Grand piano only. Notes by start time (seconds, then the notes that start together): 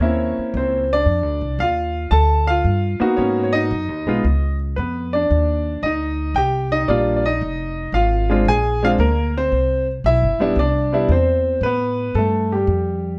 Already playing: C#5
0.01 A#3 C4 C#4 E4
0.57 C4 C5
0.93 D4 D5
1.60 F4 F5
2.11 A4 A5
2.47 F4 F5
3.00 A#3 B3 D#4 F#4
3.17 C#4 C#5
3.43 C#5
3.53 D#4 D#5
4.07 G#3 B3 D#4 F4
4.76 B3 B4
5.13 D4 D5
5.83 D#4 D#5
6.36 G4 G5
6.72 D#4 D#5
6.88 G3 A#3 D4 F4 D5
7.16 D5
7.26 D#4 D#5
7.94 F4 F5
8.30 G#3 C4 D4 F4
8.48 G#4 G#5
8.83 G#3 C4 D4 F4 F5
9.00 A#3 A#4
9.37 C4 C5
10.06 E4 E5
10.40 G3 B3 D4 E4
10.59 D4 D5
10.93 G3 B3 D4 E4
11.12 C4 C5
11.63 B3 B4
12.15 A3 A4
12.52 G3 G4